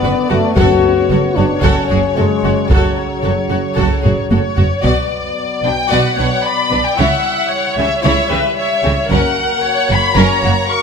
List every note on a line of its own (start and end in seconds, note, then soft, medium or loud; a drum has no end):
0.00 0.12 F#2 soft
0.00 0.55 D3 medium
0.00 0.29 B3 medium
0.00 1.65 B3 medium
0.00 0.11 F#4 soft
0.00 0.54 D5 medium
0.04 0.13 F#1 soft
0.04 0.12 B4 soft
0.29 0.40 F#1 soft
0.29 0.40 F#2 soft
0.29 0.57 A3 medium
0.29 0.38 F#4 medium
0.29 0.39 F#4 soft
0.56 0.66 F#1 medium
0.56 0.65 F#2 medium
0.56 1.33 F#2 medium
0.56 4.58 C#3 soft
0.56 1.35 F#4 medium
0.56 0.82 F#4 medium
0.56 0.82 A4 medium
0.56 4.27 C#5 medium
0.56 taiko medium
1.10 1.19 F#1 soft
1.10 1.18 F#2 soft
1.10 1.19 F#4 soft
1.10 1.18 A4 soft
1.35 1.46 F#1 soft
1.35 1.45 F#2 soft
1.35 1.63 D4 medium
1.35 1.44 F#4 soft
1.35 1.46 F#4 soft
1.63 1.72 F#1 medium
1.63 1.72 F#2 medium
1.63 4.59 F#3 soft
1.63 2.17 C#4 medium
1.63 1.88 F#4 medium
1.63 1.89 A4 medium
1.63 taiko medium
1.90 1.99 F#1 soft
1.90 1.99 F#2 soft
1.90 1.98 F#4 soft
1.90 1.99 G#4 soft
2.16 2.26 F#1 soft
2.16 2.26 F#2 soft
2.16 2.70 G#3 medium
2.16 2.25 F#4 soft
2.16 2.25 A4 soft
2.44 2.52 F#1 soft
2.44 2.52 F#2 soft
2.44 2.52 F#4 soft
2.69 2.79 F#1 medium
2.69 2.78 F#2 medium
2.69 4.57 F#3 medium
2.69 2.96 F#4 medium
2.69 2.96 A4 soft
2.69 taiko medium
3.23 3.32 F#1 soft
3.23 3.32 F#2 soft
3.23 3.32 F#4 soft
3.23 3.31 A4 soft
3.50 3.59 F#1 soft
3.50 3.59 F#2 soft
3.50 3.58 F#4 soft
3.50 3.59 F#4 soft
3.76 3.85 F#1 medium
3.76 3.86 F#2 medium
3.76 4.02 F#4 soft
3.76 4.02 A4 soft
3.76 taiko medium
4.03 4.13 F#1 soft
4.03 4.13 F#2 soft
4.03 4.12 F#4 soft
4.03 4.11 G#4 soft
4.03 taiko low-mid medium
4.30 4.39 F#1 soft
4.30 4.39 F#2 soft
4.30 4.38 F#4 soft
4.30 4.39 A4 soft
4.30 4.82 C#5 medium
4.30 taiko high medium
4.57 4.66 F#1 soft
4.57 4.67 F#2 soft
4.57 4.65 F#4 soft
4.57 4.66 F#4 soft
4.57 taiko low medium
4.84 4.92 B1 soft
4.84 4.93 B2 medium
4.84 6.94 F#3 soft
4.84 6.94 B3 soft
4.84 5.09 F#4 soft
4.84 5.64 D5 medium
4.84 5.09 D5 soft
4.84 taiko soft
5.64 5.72 B1 soft
5.64 5.73 B2 soft
5.64 5.73 D4 soft
5.64 5.72 B4 soft
5.64 5.91 G5 medium
5.64 taiko soft
5.90 6.00 B1 medium
5.90 5.99 B2 medium
5.90 6.16 F#4 soft
5.90 6.15 B4 soft
5.90 6.16 D5 medium
5.90 6.44 F#5 medium
6.16 6.27 B1 soft
6.16 6.26 B2 soft
6.16 6.26 D4 soft
6.16 6.26 B4 soft
6.16 6.43 C#5 soft
6.43 6.97 D5 soft
6.43 6.84 B5 medium
6.71 6.81 B1 soft
6.71 6.80 B2 soft
6.71 6.80 D4 soft
6.71 6.79 B4 soft
6.84 6.98 G5 medium
6.97 7.07 C#2 soft
6.97 7.07 C#3 medium
6.97 9.12 G3 soft
6.97 9.07 E4 soft
6.97 7.23 E4 soft
6.97 7.23 C#5 soft
6.97 7.50 E5 soft
6.97 7.78 F#5 medium
7.50 8.03 C#5 soft
7.76 7.86 C#2 soft
7.76 7.87 C#3 soft
7.76 7.87 C#4 soft
7.76 7.87 G4 soft
7.76 8.02 E5 medium
8.03 8.13 C#2 medium
8.03 8.13 C#3 medium
8.03 8.29 E4 medium
8.03 8.30 C#5 medium
8.03 8.29 C#5 medium
8.03 8.56 E5 medium
8.30 8.39 C#2 soft
8.30 8.40 C#3 soft
8.30 8.38 C#4 soft
8.30 8.38 G4 soft
8.30 8.57 B4 soft
8.57 9.09 C#5 soft
8.57 9.10 E5 medium
8.84 8.92 C#2 soft
8.84 8.93 C#3 soft
8.84 8.92 C#4 soft
8.84 8.92 G4 soft
9.10 9.19 F#1 medium
9.10 9.18 F#2 medium
9.10 10.82 A#3 medium
9.10 9.36 C#4 soft
9.10 10.82 F#4 soft
9.10 9.64 A#4 soft
9.10 9.36 A#4 soft
9.10 9.89 F#5 medium
9.10 taiko soft
9.63 10.15 C#5 medium
9.89 9.99 F#1 soft
9.89 9.99 F#2 soft
9.89 9.98 A#3 soft
9.89 9.97 F#4 soft
9.89 10.18 B5 medium
10.16 10.25 F#1 medium
10.16 10.25 F#2 medium
10.16 10.42 C#4 medium
10.16 10.42 A#4 medium
10.16 10.69 C#5 medium
10.16 10.71 A#5 medium
10.44 10.52 F#1 soft
10.44 10.52 F#2 soft
10.44 10.52 A#3 soft
10.44 10.52 F#4 medium
10.70 10.82 A#4 soft
10.70 10.82 C#6 medium